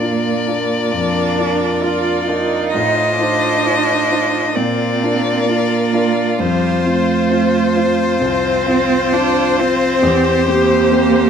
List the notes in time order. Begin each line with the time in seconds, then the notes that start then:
Already playing: A#2 A#3 F4 A#4 D5
0.00 D4 F4 A#4
0.47 D4 F4 A#4
0.91 F2 D4
1.38 D4 F4 A#4
1.83 D4 F4 A#4
2.27 D4 D#4 F4 A#4
2.73 A2 C5 D#5
3.16 D4 D#4 F4 C5
3.64 D#4 F4 C5
4.11 D#4 F4 C5
4.55 A#2 C4 F4 A#4 D5
5.03 D4 F4 A#4
5.46 A#3 D4 F4 A#4
5.93 D4 F4 A#4
6.38 F2 G3 C5
6.84 A3 C4 F4 C5
7.30 C4 F4 C5
7.75 C4 F4 C5
8.20 C2 C4
8.66 C4 F4 C5
9.12 C4 D4 F4 C5
9.58 C4 F4 C5
10.03 E2 G4
10.46 A#3 C4 G4 C5
10.90 C4 G4 C5